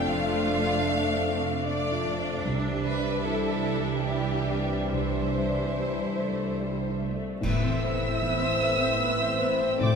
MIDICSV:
0, 0, Header, 1, 12, 480
1, 0, Start_track
1, 0, Key_signature, 0, "minor"
1, 0, Tempo, 792602
1, 52, Time_signature, 3, 2, 24, 8
1, 2452, Tempo, 860832
1, 3412, Tempo, 826446
1, 4372, Tempo, 790514
1, 5909, End_track
2, 0, Start_track
2, 0, Title_t, "Violin section"
2, 0, Program_c, 0, 48
2, 0, Note_on_c, 0, 77, 73
2, 1456, Note_off_c, 0, 77, 0
2, 1479, Note_on_c, 0, 76, 72
2, 4230, Note_off_c, 0, 76, 0
2, 4380, Note_on_c, 0, 88, 99
2, 5794, Note_off_c, 0, 88, 0
2, 5816, Note_on_c, 0, 86, 91
2, 5909, Note_off_c, 0, 86, 0
2, 5909, End_track
3, 0, Start_track
3, 0, Title_t, "Flute"
3, 0, Program_c, 1, 73
3, 4368, Note_on_c, 1, 76, 91
3, 5817, Note_on_c, 1, 74, 81
3, 5827, Note_off_c, 1, 76, 0
3, 5909, Note_off_c, 1, 74, 0
3, 5909, End_track
4, 0, Start_track
4, 0, Title_t, "Violin section"
4, 0, Program_c, 2, 48
4, 50, Note_on_c, 2, 77, 88
4, 1002, Note_on_c, 2, 74, 85
4, 1004, Note_off_c, 2, 77, 0
4, 1470, Note_off_c, 2, 74, 0
4, 1719, Note_on_c, 2, 71, 95
4, 1947, Note_off_c, 2, 71, 0
4, 1964, Note_on_c, 2, 69, 80
4, 2446, Note_on_c, 2, 67, 76
4, 2453, Note_off_c, 2, 69, 0
4, 2933, Note_on_c, 2, 72, 75
4, 2938, Note_off_c, 2, 67, 0
4, 4107, Note_off_c, 2, 72, 0
4, 4374, Note_on_c, 2, 76, 77
4, 5791, Note_off_c, 2, 76, 0
4, 5811, Note_on_c, 2, 74, 76
4, 5909, Note_off_c, 2, 74, 0
4, 5909, End_track
5, 0, Start_track
5, 0, Title_t, "Grand piano"
5, 0, Program_c, 3, 0
5, 0, Control_c, 3, 64, 127
5, 0, Note_on_c, 3, 57, 50
5, 0, Note_on_c, 3, 65, 55
5, 0, Note_on_c, 3, 72, 44
5, 0, Note_on_c, 3, 74, 54
5, 48, Note_on_c, 3, 41, 78
5, 62, Control_c, 3, 64, 0
5, 64, Note_off_c, 3, 65, 0
5, 66, Note_off_c, 3, 57, 0
5, 67, Note_off_c, 3, 72, 0
5, 147, Note_off_c, 3, 74, 0
5, 161, Control_c, 3, 64, 127
5, 202, Note_on_c, 3, 57, 59
5, 358, Note_on_c, 3, 74, 59
5, 461, Note_off_c, 3, 57, 0
5, 524, Note_on_c, 3, 72, 49
5, 619, Note_off_c, 3, 74, 0
5, 684, Note_on_c, 3, 74, 58
5, 685, Note_off_c, 3, 72, 0
5, 844, Note_on_c, 3, 57, 52
5, 940, Note_off_c, 3, 74, 0
5, 999, Note_on_c, 3, 74, 52
5, 1098, Note_off_c, 3, 57, 0
5, 1159, Note_on_c, 3, 65, 48
5, 1255, Note_off_c, 3, 74, 0
5, 1326, Note_on_c, 3, 74, 57
5, 1415, Note_off_c, 3, 65, 0
5, 1455, Note_off_c, 3, 41, 0
5, 1484, Note_off_c, 3, 74, 0
5, 1486, Note_on_c, 3, 36, 70
5, 1493, Control_c, 3, 64, 0
5, 1589, Control_c, 3, 64, 127
5, 1645, Note_on_c, 3, 55, 52
5, 1802, Note_on_c, 3, 74, 50
5, 1902, Note_off_c, 3, 55, 0
5, 1958, Note_on_c, 3, 72, 46
5, 2062, Note_off_c, 3, 74, 0
5, 2123, Note_off_c, 3, 72, 0
5, 2129, Note_on_c, 3, 74, 48
5, 2294, Note_on_c, 3, 55, 41
5, 2389, Note_off_c, 3, 74, 0
5, 2456, Note_on_c, 3, 74, 46
5, 2550, Note_off_c, 3, 55, 0
5, 2617, Note_on_c, 3, 64, 38
5, 2711, Note_off_c, 3, 74, 0
5, 2775, Note_on_c, 3, 74, 45
5, 2878, Note_off_c, 3, 64, 0
5, 2922, Note_off_c, 3, 36, 0
5, 2940, Note_on_c, 3, 36, 50
5, 2953, Control_c, 3, 64, 0
5, 3038, Note_off_c, 3, 74, 0
5, 3064, Control_c, 3, 64, 127
5, 3105, Note_on_c, 3, 55, 36
5, 3256, Note_on_c, 3, 74, 39
5, 3353, Note_off_c, 3, 55, 0
5, 3409, Note_on_c, 3, 72, 35
5, 3509, Note_off_c, 3, 74, 0
5, 3565, Note_on_c, 3, 74, 38
5, 3572, Note_off_c, 3, 72, 0
5, 3723, Note_on_c, 3, 55, 35
5, 3825, Note_off_c, 3, 74, 0
5, 3888, Note_on_c, 3, 74, 39
5, 3983, Note_off_c, 3, 55, 0
5, 4047, Note_on_c, 3, 64, 35
5, 4148, Note_off_c, 3, 74, 0
5, 4203, Note_on_c, 3, 74, 37
5, 4308, Note_off_c, 3, 64, 0
5, 4351, Note_off_c, 3, 36, 0
5, 4364, Note_on_c, 3, 45, 63
5, 4368, Note_off_c, 3, 74, 0
5, 4386, Control_c, 3, 64, 0
5, 4503, Control_c, 3, 64, 127
5, 4615, Note_on_c, 3, 72, 53
5, 4851, Note_on_c, 3, 52, 49
5, 5002, Note_off_c, 3, 72, 0
5, 5094, Note_on_c, 3, 72, 47
5, 5237, Note_off_c, 3, 52, 0
5, 5333, Note_on_c, 3, 64, 48
5, 5477, Note_off_c, 3, 72, 0
5, 5576, Note_on_c, 3, 72, 56
5, 5717, Note_off_c, 3, 64, 0
5, 5785, Note_off_c, 3, 45, 0
5, 5810, Note_on_c, 3, 45, 69
5, 5816, Note_off_c, 3, 72, 0
5, 5826, Control_c, 3, 64, 0
5, 5909, Note_off_c, 3, 45, 0
5, 5909, End_track
6, 0, Start_track
6, 0, Title_t, "Harp"
6, 0, Program_c, 4, 46
6, 0, Note_on_c, 4, 48, 59
6, 0, Note_on_c, 4, 57, 54
6, 0, Note_on_c, 4, 65, 61
6, 0, Note_on_c, 4, 69, 47
6, 0, Note_on_c, 4, 74, 59
6, 53, Note_on_c, 4, 41, 69
6, 239, Note_off_c, 4, 69, 0
6, 287, Note_off_c, 4, 57, 0
6, 294, Note_on_c, 4, 57, 54
6, 520, Note_off_c, 4, 65, 0
6, 527, Note_on_c, 4, 65, 62
6, 759, Note_off_c, 4, 74, 0
6, 766, Note_on_c, 4, 74, 53
6, 995, Note_off_c, 4, 65, 0
6, 1003, Note_on_c, 4, 65, 63
6, 1236, Note_off_c, 4, 48, 0
6, 1243, Note_on_c, 4, 48, 55
6, 1473, Note_off_c, 4, 48, 0
6, 1480, Note_on_c, 4, 48, 68
6, 1499, Note_off_c, 4, 65, 0
6, 1501, Note_off_c, 4, 41, 0
6, 1502, Note_off_c, 4, 57, 0
6, 1723, Note_on_c, 4, 55, 51
6, 1966, Note_on_c, 4, 64, 53
6, 2200, Note_off_c, 4, 74, 0
6, 2445, Note_off_c, 4, 64, 0
6, 2453, Note_on_c, 4, 64, 49
6, 2696, Note_on_c, 4, 60, 42
6, 2939, Note_off_c, 4, 48, 0
6, 2945, Note_on_c, 4, 48, 51
6, 3179, Note_off_c, 4, 55, 0
6, 3186, Note_on_c, 4, 55, 43
6, 3407, Note_off_c, 4, 64, 0
6, 3414, Note_on_c, 4, 64, 38
6, 3659, Note_on_c, 4, 74, 42
6, 3886, Note_off_c, 4, 64, 0
6, 3893, Note_on_c, 4, 64, 44
6, 4129, Note_off_c, 4, 60, 0
6, 4136, Note_on_c, 4, 60, 34
6, 4379, Note_on_c, 4, 45, 61
6, 4396, Note_off_c, 4, 48, 0
6, 4396, Note_off_c, 4, 74, 0
6, 4397, Note_off_c, 4, 55, 0
6, 4498, Note_on_c, 4, 52, 48
6, 4622, Note_on_c, 4, 57, 50
6, 4731, Note_off_c, 4, 64, 0
6, 4739, Note_on_c, 4, 64, 49
6, 4861, Note_on_c, 4, 72, 54
6, 4978, Note_on_c, 4, 69, 52
6, 5100, Note_on_c, 4, 76, 48
6, 5218, Note_on_c, 4, 84, 50
6, 5331, Note_off_c, 4, 76, 0
6, 5338, Note_on_c, 4, 76, 55
6, 5448, Note_off_c, 4, 72, 0
6, 5456, Note_on_c, 4, 72, 51
6, 5562, Note_off_c, 4, 64, 0
6, 5569, Note_on_c, 4, 64, 56
6, 5683, Note_off_c, 4, 57, 0
6, 5691, Note_on_c, 4, 57, 53
6, 5800, Note_off_c, 4, 45, 0
6, 5807, Note_on_c, 4, 45, 74
6, 5831, Note_off_c, 4, 64, 0
6, 5834, Note_off_c, 4, 52, 0
6, 5835, Note_off_c, 4, 76, 0
6, 5909, Note_off_c, 4, 45, 0
6, 5909, Note_off_c, 4, 57, 0
6, 5909, Note_off_c, 4, 60, 0
6, 5909, Note_off_c, 4, 69, 0
6, 5909, Note_off_c, 4, 72, 0
6, 5909, Note_off_c, 4, 84, 0
6, 5909, End_track
7, 0, Start_track
7, 0, Title_t, "Cello section"
7, 0, Program_c, 5, 48
7, 49, Note_on_c, 5, 65, 80
7, 518, Note_off_c, 5, 65, 0
7, 533, Note_on_c, 5, 62, 79
7, 769, Note_off_c, 5, 62, 0
7, 770, Note_on_c, 5, 60, 65
7, 1005, Note_on_c, 5, 62, 85
7, 1006, Note_off_c, 5, 60, 0
7, 1965, Note_on_c, 5, 64, 72
7, 1966, Note_off_c, 5, 62, 0
7, 2446, Note_off_c, 5, 64, 0
7, 2453, Note_on_c, 5, 64, 63
7, 2689, Note_off_c, 5, 64, 0
7, 2690, Note_on_c, 5, 62, 58
7, 2940, Note_off_c, 5, 62, 0
7, 2941, Note_on_c, 5, 64, 55
7, 4134, Note_off_c, 5, 64, 0
7, 4370, Note_on_c, 5, 45, 62
7, 5909, Note_off_c, 5, 45, 0
7, 5909, End_track
8, 0, Start_track
8, 0, Title_t, "Viola section"
8, 0, Program_c, 6, 48
8, 0, Note_on_c, 6, 57, 75
8, 0, Note_on_c, 6, 62, 62
8, 1456, Note_off_c, 6, 57, 0
8, 1456, Note_off_c, 6, 62, 0
8, 1475, Note_on_c, 6, 55, 69
8, 1477, Note_on_c, 6, 62, 69
8, 3344, Note_off_c, 6, 62, 0
8, 3365, Note_off_c, 6, 55, 0
8, 3411, Note_on_c, 6, 55, 54
8, 3636, Note_off_c, 6, 55, 0
8, 3657, Note_on_c, 6, 57, 62
8, 3895, Note_off_c, 6, 57, 0
8, 3896, Note_on_c, 6, 55, 52
8, 4136, Note_off_c, 6, 55, 0
8, 4138, Note_on_c, 6, 57, 52
8, 4376, Note_off_c, 6, 57, 0
8, 4379, Note_on_c, 6, 59, 56
8, 4379, Note_on_c, 6, 71, 58
8, 4491, Note_off_c, 6, 59, 0
8, 4491, Note_off_c, 6, 71, 0
8, 4497, Note_on_c, 6, 72, 51
8, 4498, Note_on_c, 6, 60, 57
8, 4619, Note_off_c, 6, 72, 0
8, 4620, Note_off_c, 6, 60, 0
8, 4620, Note_on_c, 6, 59, 55
8, 4623, Note_on_c, 6, 71, 57
8, 4741, Note_off_c, 6, 59, 0
8, 4742, Note_off_c, 6, 71, 0
8, 4743, Note_on_c, 6, 72, 53
8, 4744, Note_on_c, 6, 60, 50
8, 4860, Note_on_c, 6, 59, 56
8, 4860, Note_on_c, 6, 71, 53
8, 4862, Note_off_c, 6, 60, 0
8, 4862, Note_off_c, 6, 72, 0
8, 4971, Note_off_c, 6, 59, 0
8, 4972, Note_off_c, 6, 71, 0
8, 4979, Note_on_c, 6, 60, 59
8, 4979, Note_on_c, 6, 72, 57
8, 5095, Note_on_c, 6, 59, 55
8, 5098, Note_on_c, 6, 71, 55
8, 5099, Note_off_c, 6, 60, 0
8, 5099, Note_off_c, 6, 72, 0
8, 5214, Note_on_c, 6, 60, 58
8, 5216, Note_off_c, 6, 59, 0
8, 5216, Note_on_c, 6, 72, 56
8, 5218, Note_off_c, 6, 71, 0
8, 5332, Note_on_c, 6, 71, 62
8, 5333, Note_on_c, 6, 59, 52
8, 5335, Note_off_c, 6, 60, 0
8, 5336, Note_off_c, 6, 72, 0
8, 5445, Note_off_c, 6, 59, 0
8, 5445, Note_off_c, 6, 71, 0
8, 5452, Note_on_c, 6, 72, 57
8, 5454, Note_on_c, 6, 60, 56
8, 5570, Note_on_c, 6, 59, 65
8, 5573, Note_on_c, 6, 71, 62
8, 5574, Note_off_c, 6, 60, 0
8, 5574, Note_off_c, 6, 72, 0
8, 5687, Note_on_c, 6, 60, 60
8, 5689, Note_on_c, 6, 72, 55
8, 5692, Note_off_c, 6, 59, 0
8, 5694, Note_off_c, 6, 71, 0
8, 5801, Note_off_c, 6, 72, 0
8, 5806, Note_on_c, 6, 57, 56
8, 5809, Note_on_c, 6, 72, 61
8, 5811, Note_off_c, 6, 60, 0
8, 5909, Note_off_c, 6, 57, 0
8, 5909, Note_off_c, 6, 72, 0
8, 5909, End_track
9, 0, Start_track
9, 0, Title_t, "French horn section"
9, 0, Program_c, 7, 60
9, 0, Note_on_c, 7, 57, 76
9, 0, Note_on_c, 7, 62, 80
9, 1457, Note_off_c, 7, 57, 0
9, 1457, Note_off_c, 7, 62, 0
9, 1474, Note_on_c, 7, 62, 81
9, 1478, Note_on_c, 7, 52, 86
9, 4154, Note_off_c, 7, 62, 0
9, 4156, Note_off_c, 7, 52, 0
9, 4365, Note_on_c, 7, 60, 74
9, 4366, Note_on_c, 7, 52, 70
9, 5786, Note_off_c, 7, 52, 0
9, 5822, Note_on_c, 7, 53, 80
9, 5909, Note_off_c, 7, 53, 0
9, 5909, Note_off_c, 7, 60, 0
9, 5909, End_track
10, 0, Start_track
10, 0, Title_t, "Timpani"
10, 0, Program_c, 8, 47
10, 5819, Note_on_c, 8, 45, 88
10, 5909, Note_off_c, 8, 45, 0
10, 5909, End_track
11, 0, Start_track
11, 0, Title_t, "Double bass section"
11, 0, Program_c, 10, 48
11, 0, Note_on_c, 10, 29, 65
11, 1456, Note_off_c, 10, 29, 0
11, 1473, Note_on_c, 10, 36, 80
11, 4227, Note_off_c, 10, 36, 0
11, 4371, Note_on_c, 10, 33, 68
11, 5909, Note_off_c, 10, 33, 0
11, 5909, End_track
12, 0, Start_track
12, 0, Title_t, "Drums"
12, 4378, Note_on_c, 9, 35, 73
12, 4378, Note_on_c, 9, 49, 66
12, 4439, Note_off_c, 9, 35, 0
12, 4439, Note_off_c, 9, 49, 0
12, 5909, End_track
0, 0, End_of_file